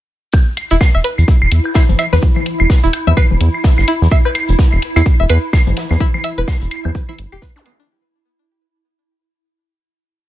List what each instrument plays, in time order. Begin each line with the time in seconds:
0.33 synth drone E4, kick, claves, shaker
0.57 closed hi-hat, claves, shaker
0.70 analog synth bass E1, synth pluck E4, closed hi-hat
0.81 kick, snare, claves, shaker
0.95 analog synth bass E1, synth pluck E5
1.04 synth pluck B4, closed hi-hat, shaker
1.18 analog synth bass E2, closed hi-hat, claves
1.28 kick, shaker
1.42 analog synth bass E1, claves
1.51 analog synth bass E2, closed hi-hat, shaker
1.65 claves
1.74 synth pluck E4, kick, snare, claves, shaker
1.89 analog synth bass G1, closed hi-hat, low conga
1.99 synth pluck E5, closed hi-hat, claves, shaker
2.13 analog synth bass E2, synth pluck B4, snare, low conga
2.22 kick, shaker
2.36 low conga, claves
2.46 closed hi-hat, shaker
2.60 analog synth bass E1, claves
2.70 kick, snare, shaker
2.83 analog synth bass E1, synth pluck E4, closed hi-hat
2.93 closed hi-hat, claves, shaker
3.07 analog synth bass E2, synth pluck E5, low conga
3.17 synth pluck B4, kick, claves, shaker
3.31 analog synth bass E1, low conga
3.41 analog synth bass E2, closed hi-hat, shaker
3.54 claves
3.64 kick, snare, shaker
3.78 analog synth bass G1, snare, claves
3.88 synth pluck E4, closed hi-hat, shaker
4.02 analog synth bass E2, snare
4.11 synth pluck E5, kick, claves, shaker
4.25 synth pluck B4, claves
4.35 closed hi-hat, claves, shaker
4.49 analog synth bass E1, closed hi-hat
4.59 kick, snare, shaker
4.72 analog synth bass E1, claves
4.82 closed hi-hat, shaker
4.96 analog synth bass E2, synth pluck E4, closed hi-hat, claves
5.06 kick, shaker
5.20 analog synth bass E1, synth pluck E5
5.29 analog synth bass E2, synth pluck B4, closed hi-hat, claves, shaker
5.53 kick, snare, claves, shaker
5.67 analog synth bass G1, closed hi-hat, low conga
5.77 snare, closed hi-hat, shaker
5.91 analog synth bass E2, snare, low conga, claves
6.00 synth pluck E4, kick, shaker
6.14 low conga, claves
6.24 synth pluck E5, closed hi-hat, shaker
6.38 analog synth bass E1, synth pluck B4
6.48 kick, snare, claves, shaker
6.61 analog synth bass E1, closed hi-hat
6.71 closed hi-hat, claves, shaker
6.85 analog synth bass E2, low conga, claves
6.95 kick, shaker
7.09 synth pluck E4, low conga, claves
7.18 analog synth bass G1, closed hi-hat, shaker
7.32 analog synth bass E1, synth pluck G4, claves
7.42 synth pluck B4, kick, snare, shaker
7.56 synth pluck D4, snare, zap
7.66 synth pluck B3, closed hi-hat, claves, shaker
7.79 synth pluck D4, snare